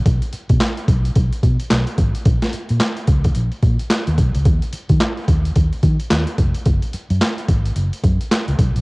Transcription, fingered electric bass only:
X:1
M:4/4
L:1/16
Q:"Swing 16ths" 1/4=109
K:Gb
V:1 name="Fingered electric bass" clef=bass
C,, z2 C, z2 C,,2 C,, z C, z C,, z A,,, z | B,,, z2 B,, z2 D,,2 B,,, z B,, z2 E,, C,, D,, | E,, z2 E, z2 E,,2 E,, z E, z E,, z F,,, z | G,,, z2 G,, z2 A,,,2 G,,, z G,, z2 D,, C,, B,,, |]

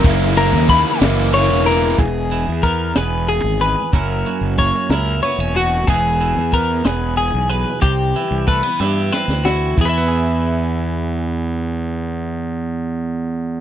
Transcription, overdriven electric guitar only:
X:1
M:6/8
L:1/8
Q:3/8=62
K:Elyd
V:1 name="Overdriven electric guitar"
[F,,C,E,A,E] [E,A,E] [C,E,A,E] [E,A,E] [C,E,A,E] [E,A,E] | z6 | z6 | z6 |
z6 | z6 | z6 |]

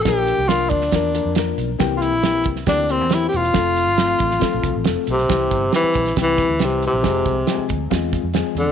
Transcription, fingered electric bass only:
X:1
M:4/4
L:1/16
Q:1/4=138
K:Cmix
V:1 name="Fingered electric bass" clef=bass
B,,,3 C,,3 D,,2 E,,3 F,,3 =B,,,2 | C,,3 B,,,3 C,,2 D,,3 E,,3 E,,,2 | F,,,3 G,,,3 A,,,2 z B,,, C,, A,,, F,,, z =B,,,2 | C,,2 G,,,2 z2 B,,,2 C,,3 D,, C,,3 B,,, |
F,,,2 C,,2 z2 D,,2 E,,3 F,,2 z E,, _D,, |]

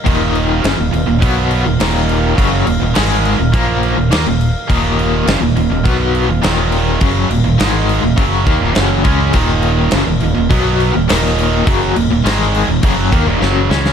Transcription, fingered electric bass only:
X:1
M:4/4
L:1/16
Q:1/4=103
K:Ebm
V:1 name="Fingered electric bass" clef=bass
E,,,4 G,,, E,,, E,,, E,,, C,,3 E,,, E,,,4 | G,,,2 E,,, E,,, A,,,3 E,,, B,,,3 E,,, E,, E,,,2 z | E,,,4 G,,, E,,, E,,, E,,, C,,3 E,,, E,,,4 | G,,,2 E,,, E,,, A,,,3 E,,, G,,,2 E,, E,,, G,,,2 D,,2 |
E,,,4 G,,, E,,, E,,, E,,, C,,3 E,,, E,,,4 | G,,,2 E,,, E,,, A,,,3 E,,, G,,,2 E,, E,,, G,,,2 D,,2 |]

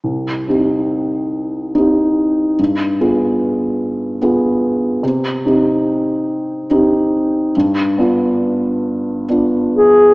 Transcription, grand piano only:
X:1
M:6/8
L:1/8
Q:3/8=48
K:Cm
V:1 name="Grand piano"
C,, [CEG]3 [CEG]2 | G,, [=B,FA]3 [B,FA]2 | C, [CEG]3 [CEG]2 | G,, [=B,DF]3 [B,DF]2 |]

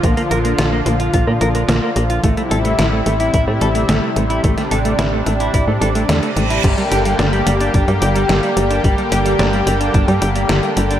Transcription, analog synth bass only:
X:1
M:4/4
L:1/16
Q:1/4=109
K:Gdor
V:1 name="Analog synth bass" clef=bass
B,,, z B,,,2 B,,,2 B,,,2 B,,, B,, B,,,2 B,,, z B,,,2 | A,,, z A,,,2 A,,,2 A,,,2 A,,, A,, A,,,2 A,,, z A,,,2 | A,,, z A,,,2 A,,,2 A,,,2 A,,, A,, A,,,2 E,, z A,,,2 | G,,, z G,,,2 G,,,2 G,,,2 G,,, G,, G,,,2 G,,, z G,,,2 |
G,,, z G,,,2 G,,,2 G,,,2 G,,, G,, G,,,2 G,,, z G,,,2 |]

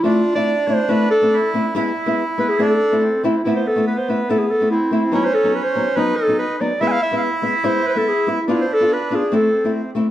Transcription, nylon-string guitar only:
X:1
M:2/4
L:1/16
Q:1/4=142
K:Am
V:1 name="Nylon-string guitar"
[A,CE]2 z [A,CE] z2 [A,CE] z | [A,CE]2 z [A,CE] z2 [A,CE] z | [^G,B,E]2 z [G,B,E] z2 [G,B,E] z | [A,CE]2 z [A,CE] z2 [A,CE] z |
[A,CE]2 z [A,CE] z2 [A,CE] z | [A,CE]2 z [A,CE] z2 [A,CE] z | [^F,B,^D]2 z [F,B,D] z2 [F,B,D] z | [^F,B,^D]2 z [F,B,D] z2 [F,B,D] z |
[^G,B,E]2 z [G,B,E] z2 [G,B,E] z | [^G,B,E]2 z [G,B,E] z2 [G,B,E] z | [B,DF]2 z [B,DF] z2 [B,DF] z | [A,CE]2 z [A,CE] z2 [A,CE] z |]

